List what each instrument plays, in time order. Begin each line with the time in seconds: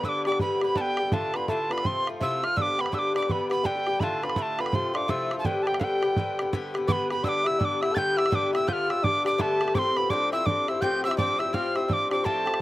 Already playing: hammered dulcimer G4 A4 B4 F5
0.04 bouzouki G2 D3 B3 G4, bassoon D4, hammered dulcimer D5, tin whistle E6, bodhran
0.09 tin whistle D6
0.25 bouzouki B3 G4, bassoon D4, hammered dulcimer D5, tin whistle D6, bodhran
0.30 bouzouki D3, bodhran
0.39 bouzouki G2 D3 B3 G4, bassoon B3, hammered dulcimer B4, tin whistle B5, bodhran
0.55 hammered dulcimer C5
0.61 bouzouki D3 B3 G4, bassoon B3, hammered dulcimer B4, tin whistle B5, bodhran
0.76 bouzouki G2 D3 B3 G4, bassoon G3, hammered dulcimer G4, tin whistle A5, bodhran
0.81 tin whistle G5
0.97 bouzouki B3 G4, bodhran
1.01 bouzouki D3
1.12 bouzouki A2 D3 D4 F4, bassoon A3, hammered dulcimer A4, tin whistle A5, bodhran
1.34 bouzouki D3 D4 F4, bassoon B3, hammered dulcimer B4, tin whistle B5, bodhran
1.48 bouzouki A2 D3 D4 F4, bassoon A3, hammered dulcimer A4, tin whistle A5, bodhran
1.69 bassoon B3, bouzouki D4 F4, hammered dulcimer B4, tin whistle B5, bodhran
1.73 bouzouki D3
1.78 bodhran
1.82 bouzouki C3 F3 A3, bassoon C4, hammered dulcimer C5, tin whistle C6, bodhran
1.87 bouzouki F4
2.07 bouzouki F3 A3 F4, bodhran
2.20 bouzouki C3 F3 A3 F4, bassoon E4, hammered dulcimer E5, tin whistle E6, bodhran
2.42 bouzouki F3 A3 F4, hammered dulcimer F5, tin whistle F6, bodhran
2.56 bouzouki G2 D3 B3 G4, bassoon D4, hammered dulcimer D5, tin whistle E6, bodhran
2.62 tin whistle D6
2.78 bouzouki D3 B3 G4, bassoon B3, hammered dulcimer B4, tin whistle B5, bodhran
2.86 bassoon C4, bodhran
2.92 bouzouki G2 D3 B3 G4, bassoon D4, hammered dulcimer D5, tin whistle E6, bodhran
2.99 tin whistle D6
3.14 bouzouki D3 B3 G4, bassoon D4, hammered dulcimer D5, tin whistle D6, bodhran
3.23 hammered dulcimer B4, bodhran
3.28 bouzouki G2 D3 B3 G4, bassoon B3, tin whistle B5 D6, bodhran
3.50 bouzouki D3 B3 G4, bassoon B3, hammered dulcimer B4, tin whistle B5, bodhran
3.63 bouzouki G2 D3 B3 G4, bassoon G3, hammered dulcimer G4, tin whistle G5, bodhran
3.75 hammered dulcimer G4
3.87 bouzouki D3 B3 G4, hammered dulcimer G4, bodhran
4.00 bouzouki A2 D3 D4 F4, bassoon A3, hammered dulcimer A4, tin whistle A5 B5, bodhran
4.22 bouzouki D3 D4 F4, bassoon B3, hammered dulcimer B4, tin whistle B5, bodhran
4.29 bodhran
4.35 bouzouki A2 D3 D4, bassoon A3 B3, hammered dulcimer A4, tin whistle B5, bodhran
4.39 bouzouki F4, tin whistle A5
4.59 bouzouki D3 D4 F4, bassoon B3, hammered dulcimer B4, tin whistle B5, bodhran
4.66 bodhran
4.72 bouzouki C3 F3 A3 F4, bassoon C4, hammered dulcimer C5, tin whistle C6, bodhran
4.94 bouzouki F3 A3 F4, bassoon D4, hammered dulcimer D5, tin whistle D6, bodhran
5.08 bouzouki C3 F3 A3 F4, bassoon E4, hammered dulcimer E5, tin whistle E6, bodhran
5.31 bouzouki F3 A3 F4, bodhran
5.37 bassoon A3, hammered dulcimer A4, tin whistle A5
5.44 bouzouki G2 D3 B3 G4, bassoon G3, hammered dulcimer G4, tin whistle G5, bodhran
5.63 bouzouki G4, tin whistle A5
5.67 bouzouki D3 B3, tin whistle G5, bodhran
5.74 bassoon A3, bodhran
5.79 bouzouki G2 D3 B3 G4, bassoon G3, tin whistle F5, bodhran
5.84 tin whistle G5
6.02 bouzouki D3 B3 G4, bodhran
6.13 bassoon F3 G3, bodhran
6.18 bouzouki D3 B3 G4
6.39 bouzouki D3 B3 G4, bodhran
6.53 bouzouki G2 D3 B3 G4, bodhran
6.74 bouzouki D3 B3 G4, bodhran
6.87 bouzouki G2 D3 B3 G4, bassoon B3, hammered dulcimer B4, tin whistle D6, bodhran
6.92 tin whistle B5
7.10 bouzouki D3 B3 G4, bassoon B3, hammered dulcimer B4, tin whistle B5, bodhran
7.23 bouzouki G2 D3 B3 G4, bassoon D4, hammered dulcimer D5, tin whistle E6, bodhran
7.29 tin whistle D6
7.45 bouzouki B3 G4, bassoon E4, hammered dulcimer E5, tin whistle E6, bodhran
7.49 bouzouki D3
7.59 bouzouki G2 D3 B3 G4, bassoon D4, hammered dulcimer D5, tin whistle E6, bodhran
7.65 tin whistle D6
7.81 bouzouki D3 B3 G4, bassoon E4, hammered dulcimer E5, tin whistle E6, bodhran
7.93 bouzouki G2, bassoon G4 A4, hammered dulcimer G5, tin whistle A6, bodhran
7.97 bouzouki D3 B3 G4, tin whistle G6
8.17 bouzouki D3 B3 G4, bassoon E4, tin whistle E6, bodhran
8.26 bodhran
8.31 bouzouki G2 D3 B3 G4, bassoon D4, hammered dulcimer D5, tin whistle E6, bodhran
8.35 tin whistle D6
8.53 bouzouki D3 B3 G4, bassoon E4, hammered dulcimer E5, tin whistle E6, bodhran
8.67 bouzouki G2 D3 B3 G4, bassoon F4, hammered dulcimer F5, tin whistle G6, bodhran
8.73 tin whistle F6
8.89 bouzouki D3 B3 G4, hammered dulcimer E5, tin whistle E6, bodhran
9.03 bouzouki G2 D3 B3 G4, bassoon D4, hammered dulcimer D5, tin whistle D6, bodhran
9.25 bouzouki D3 B3 G4, hammered dulcimer D5, tin whistle D6, bodhran
9.34 hammered dulcimer B4
9.38 bouzouki G2 D3 B3 G4, bassoon A3, hammered dulcimer A4, tin whistle A5, bodhran
9.61 bouzouki D3 B3 G4, bodhran
9.68 bodhran
9.75 bouzouki A2 F3 C4 G4, bassoon C4, hammered dulcimer C5, tin whistle C6 D6, bodhran
9.96 bouzouki F3 C4 G4, bassoon B3, hammered dulcimer B4, tin whistle B5, bodhran
10.10 bouzouki A2 F3 C4 G4, bassoon D4, hammered dulcimer D5, tin whistle D6, bodhran
10.32 bouzouki F3 C4 G4, bassoon E4, hammered dulcimer E5, tin whistle E6, bodhran
10.45 bouzouki A2 F3 C4 G4, bassoon D4, hammered dulcimer D5, tin whistle D6, bodhran
10.67 bouzouki F3 C4 G4, bassoon E4, hammered dulcimer E5, tin whistle E6, bodhran
10.81 bouzouki A2 F3 C4 G4, bassoon G4, hammered dulcimer G5, tin whistle G6, bodhran
11.04 bouzouki F3 C4 G4, bassoon E4, hammered dulcimer E5, tin whistle E6, bodhran
11.11 bodhran
11.17 bouzouki A2 F3 C4 G4, bassoon D4, hammered dulcimer D5, tin whistle D6, bodhran
11.39 bouzouki F3 C4 G4, bassoon E4, hammered dulcimer E5, tin whistle E6, bodhran
11.53 bouzouki A2 F3 C4 G4, bassoon F4, hammered dulcimer F5, tin whistle F6, bodhran
11.75 bouzouki F3 C4 G4, bassoon E4, hammered dulcimer E5, tin whistle E6, bodhran
11.85 bouzouki A2, bassoon D4 E4, tin whistle E6
11.89 bouzouki F3 C4 G4, hammered dulcimer D5, tin whistle D6, bodhran
12.10 bouzouki F3 C4 G4, bassoon D4, hammered dulcimer D5, tin whistle D6, bodhran
12.24 bouzouki A2 F3 C4 G4, bassoon A3, hammered dulcimer A4, tin whistle A5, bodhran
12.45 bouzouki F3 C4 G4, hammered dulcimer A4, bodhran
12.54 bodhran